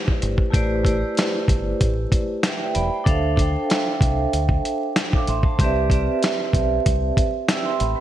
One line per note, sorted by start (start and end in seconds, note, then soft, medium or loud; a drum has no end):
0.00 0.50 A3 medium
0.00 0.51 E4 medium
0.00 0.52 G4 medium
0.00 0.53 B4 medium
0.00 0.54 C5 medium
0.00 0.55 D5 loud
0.08 kick loud
0.22 0.36 G1 loud
0.22 closed hi-hat medium
0.38 kick medium
0.50 1.02 A1 loud
0.50 0.81 A3 medium
0.50 0.81 E4 medium
0.50 0.82 G4 medium
0.50 0.82 B4 medium
0.50 0.83 C5 medium
0.50 kick loud
0.50 closed hi-hat medium
0.55 0.83 D5 loud
0.84 1.99 A3 medium
0.84 2.00 E4 medium
0.84 2.00 G4 medium
0.84 2.01 B4 medium
0.84 2.01 C5 medium
0.84 kick medium
0.84 closed hi-hat medium
0.88 2.02 D5 loud
1.17 snare loud
1.17 closed hi-hat loud
1.48 1.73 G1 loud
1.48 kick loud
1.48 closed hi-hat medium
1.81 2.05 A1 medium
1.81 kick loud
1.81 closed hi-hat loud
2.12 kick loud
2.12 closed hi-hat medium
2.43 2.75 B4 medium
2.43 2.61 E5 medium
2.43 2.60 G5 medium
2.43 snare loud
2.43 closed hi-hat medium
2.61 2.73 G5 medium
2.74 2.88 E1 medium
2.74 2.91 D5 medium
2.74 3.04 G5 medium
2.74 2.91 B5 medium
2.74 closed hi-hat medium
2.93 3.05 C5 medium
2.93 3.23 A5 medium
3.04 3.55 D2 loud
3.04 3.34 D4 medium
3.04 3.34 A4 medium
3.04 3.35 C5 medium
3.04 3.36 E5 medium
3.04 kick loud
3.04 closed hi-hat medium
3.09 3.36 F5 loud
3.36 4.52 D4 medium
3.36 4.52 A4 medium
3.36 4.53 C5 medium
3.36 4.54 E5 medium
3.36 kick medium
3.36 closed hi-hat medium
3.41 4.54 G5 medium
3.70 snare loud
3.70 closed hi-hat medium
4.01 4.25 C2 medium
4.01 kick loud
4.01 closed hi-hat medium
4.33 4.57 D2 loud
4.33 closed hi-hat loud
4.49 kick medium
4.65 closed hi-hat medium
4.96 snare loud
4.96 closed hi-hat medium
5.13 5.28 F5 medium
5.13 5.28 D6 medium
5.13 kick loud
5.27 5.41 A1 medium
5.27 5.45 E5 medium
5.27 5.44 C6 medium
5.27 closed hi-hat medium
5.43 5.75 C5 medium
5.43 5.74 A5 medium
5.43 kick medium
5.59 6.07 C2 loud
5.59 5.88 C4 medium
5.59 5.89 G4 medium
5.59 5.89 B4 medium
5.59 kick loud
5.59 closed hi-hat medium
5.63 5.90 D5 medium
5.63 5.90 E5 loud
5.90 7.05 C4 medium
5.90 7.06 G4 medium
5.90 7.06 B4 medium
5.90 7.07 D5 medium
5.90 kick medium
5.90 closed hi-hat medium
5.95 7.07 E5 loud
6.23 snare loud
6.23 closed hi-hat medium
6.53 6.78 B1 medium
6.53 kick loud
6.53 closed hi-hat medium
6.86 7.10 C2 medium
6.86 kick loud
6.86 closed hi-hat loud
7.17 kick loud
7.17 closed hi-hat medium
7.48 7.65 G5 medium
7.48 7.65 E6 medium
7.48 snare loud
7.48 closed hi-hat medium
7.65 7.79 E5 medium
7.65 7.79 C6 medium
7.80 7.94 A1 medium
7.80 7.97 B5 medium
7.80 closed hi-hat medium
7.95 8.00 B4 medium
7.95 8.00 G5 medium